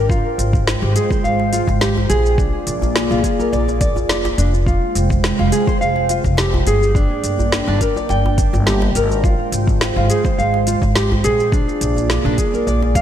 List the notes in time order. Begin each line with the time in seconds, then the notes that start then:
Already playing: G#1 G5
0.10 G#3 F4 C5, kick, shaker
0.38 G#1, closed hi-hat, shaker
0.53 kick, shaker
0.67 snare, shaker
0.82 G#1 G4, djembe slap
0.96 G#4, closed hi-hat, shaker
1.10 C5, kick, djembe tone, shaker
1.24 G#1 F5, shaker
1.40 djembe slap
1.53 F4, closed hi-hat, shaker
1.68 G#1, kick, djembe tone, shaker
1.81 G4, snare, djembe slap, shaker
1.97 djembe bass
2.10 A#1 G#4, closed hi-hat, shaker
2.26 djembe tone, shaker
2.38 A#3 D4 G#4 D5, kick, shaker
2.67 A#1, closed hi-hat, shaker
2.82 djembe bass, shaker
2.96 snare, shaker
3.11 A#1 F4, djembe slap, shaker
3.24 G#4, kick, closed hi-hat, shaker
3.39 A#4, djembe tone, shaker
3.52 A#1 D5, djembe slap, shaker
3.68 djembe tone, shaker
3.81 D5, kick, closed hi-hat, shaker
3.96 F1, djembe tone, djembe bass, shaker
4.09 D5, snare, shaker
4.25 djembe slap, djembe tone, shaker
4.38 F1 D4, closed hi-hat, shaker
4.54 djembe tone, shaker
4.66 G#3 F4 C5 G5, kick, shaker
4.95 F1, closed hi-hat, shaker
5.10 kick, shaker
5.24 snare, shaker
5.39 F1 F4, djembe slap
5.52 G#4, closed hi-hat, shaker
5.67 C5, kick, djembe tone, shaker
5.81 F1 F5, shaker
5.96 djembe slap
6.09 F4, closed hi-hat, shaker
6.24 F1, kick, djembe tone, shaker
6.37 G4, snare, djembe slap, shaker
6.54 djembe bass
6.67 G1 G#4, closed hi-hat, shaker
6.82 djembe tone, shaker
6.95 A#3 D4 D5, kick, shaker
7.23 G1, closed hi-hat, shaker
7.39 djembe bass, shaker
7.52 snare, shaker
7.67 G1 D4, djembe slap
7.81 A#4, kick, closed hi-hat, shaker
7.96 D5, djembe tone, shaker
8.09 G1 G5, djembe slap, shaker
8.26 djembe tone
8.38 D4, kick, closed hi-hat, shaker
8.53 G1, djembe tone, djembe bass, shaker
8.67 G4, snare, shaker
8.82 djembe slap, djembe tone
8.95 G#1 A#4, closed hi-hat, shaker
9.10 djembe tone, shaker
9.24 G#3 F4 C5, kick, shaker
9.52 G#1, closed hi-hat, shaker
9.67 kick, shaker
9.81 snare, shaker
9.96 G#1 F4, djembe slap
10.10 G#4, closed hi-hat, shaker
10.25 C5, kick, djembe tone, shaker
10.38 G#1 F5, shaker
10.54 djembe slap
10.67 F4, closed hi-hat, shaker
10.82 G#1, kick, djembe tone, shaker
10.96 G4, snare, djembe slap, shaker
11.12 djembe bass
11.24 A#1 G#4, closed hi-hat, shaker
11.40 djembe tone, shaker
11.52 A#3 D4 F4 G#4 D5, kick, shaker
11.69 shaker
11.81 A#1, closed hi-hat, shaker
11.97 djembe bass, shaker
12.10 snare, shaker
12.25 A#1 D4, djembe slap
12.38 G#4, kick, closed hi-hat, shaker
12.54 A#4, djembe tone, shaker
12.67 A#1 D5, djembe slap, shaker
12.83 djembe tone
12.95 F5, kick, closed hi-hat, shaker